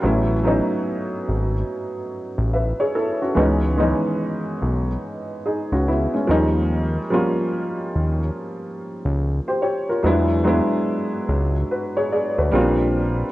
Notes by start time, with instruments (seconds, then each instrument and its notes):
0.02 analog synth bass A1, upright piano F#3 A3 B3 C#4 E4
0.43 upright piano F#3 A3 B3 C#4 D#4
1.28 analog synth bass G#1
2.38 analog synth bass A1
2.54 upright piano B4 E5
2.80 upright piano G#4 C#5
2.95 upright piano E4 A4
3.22 upright piano C#4 F#4
3.35 analog synth bass C#2, upright piano E3 G#3 B3 C#4
3.39 upright piano D#4
3.77 upright piano D#3 G#3 B3 C#4 D#4
3.83 upright piano E3
4.62 analog synth bass B1
5.45 upright piano D#4 G#4
5.72 analog synth bass C#2, upright piano C#4 F#4
5.88 upright piano B3 E4
6.13 upright piano G#3 C#4
6.27 analog synth bass D#2, upright piano F3 G3 A#3 C#4 D#4
7.10 upright piano F3 G3 A#3 C#4 F4
7.96 analog synth bass D#2
9.05 analog synth bass C#2
9.48 upright piano G4 C5
9.62 upright piano G4 C#5
9.89 upright piano F4 A#4
10.02 analog synth bass E2, upright piano F#3 G#3 B3 D4 E4
10.44 upright piano F#3 G#3 B3 D4 E4
11.29 analog synth bass C#2
11.71 upright piano F#4 B4
11.97 upright piano G#4 C#5
12.12 upright piano G#4 D5
12.38 analog synth bass D2, upright piano F#4 B4
12.51 analog synth bass A#1, upright piano G3 A#3 C4 C#4
12.55 upright piano F4
12.61 upright piano D4